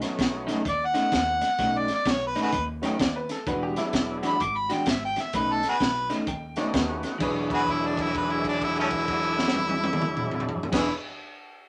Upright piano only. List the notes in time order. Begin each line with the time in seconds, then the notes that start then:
2.85 G5
3.00 D5
3.16 B4
3.31 A4
3.47 B4
3.63 G4
3.78 E4
6.28 G5
6.58 D5
6.74 G4 B4
7.22 G#4 B4
10.73 G#4 B4